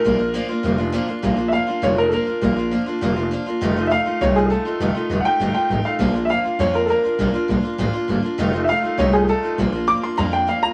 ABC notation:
X:1
M:4/4
L:1/8
Q:1/4=201
K:Bb
V:1 name="Upright piano"
B4- B z3 | z2 [=ef]2 _d B [AB]2- | [AB]2 z6 | z2 [=ef]2 _d _A [A=A]2- |
[_A=A]2 z [_g=g]2 g2 f | z2 [=ef]2 _d B [AB]2- | [AB]2 z6 | z2 [=ef]2 _d _A [A=A]2 |
z2 d' c' b g f b |]
V:2 name="Steel-string acoustic guitar"
[B,,F,B,DF] [B,DF] [B,,F,B,DF] [B,DF] [F,B,DF] [B,DF] [B,,F,B,DF] [B,DF] | [B,,F,B,DF] [B,DF] [F,B,DF] [B,DF] [B,,F,B,DF] [B,DF] [F,B,DF] [B,DF] | [B,,F,B,DF] [B,DF] [F,B,DF] [B,DF] [B,,F,B,DF] [B,DF] [F,B,DF] [B,DF] | [F,,C,E,A,EF] [E,A,EF] [E,A,EF] [E,A,EF] [F,,C,E,A,EF] [E,A,EF] [E,A,EF] [E,A,EF] |
[F,,C,E,A,EF] [E,A,EF] [E,A,EF] [E,A,EF] [F,,C,E,A,EF] [E,A,EF] [E,A,EF] [E,A,EF] | [B,,F,B,DF] [B,DF] [F,B,DF] [B,DF] [B,,F,B,DF] [B,DF] [F,B,DF] [B,DF] | [B,,F,B,DF] [B,DF] [F,B,DF] [B,DF] [B,,F,B,DF] [B,DF] [F,B,DF] [B,DF] | [F,,C,E,A,EF] [E,A,EF] [E,A,EF] [E,A,EF] [F,,C,E,A,EF] [E,A,EF] [E,A,EF] [E,A,EF] |
[B,,F,B,DF] [B,DF] [F,B,DF] [B,DF] [B,,F,B,DF] [B,DF] [F,B,DF] [B,DF] |]
V:3 name="Upright bass" clef=bass
B,,,3 z F,,,3 z | B,,,3 z F,,,3 z | B,,,3 z F,,,3 z | F,,,3 z C,,3 z |
F,,, z F,,, z G,,, z A,,, z | B,,,3 z F,,3 z | B,,, z B,,, z A,,, z G,,, z | F,,,3 z C,,3 z |
B,,,3 z F,,3 z |]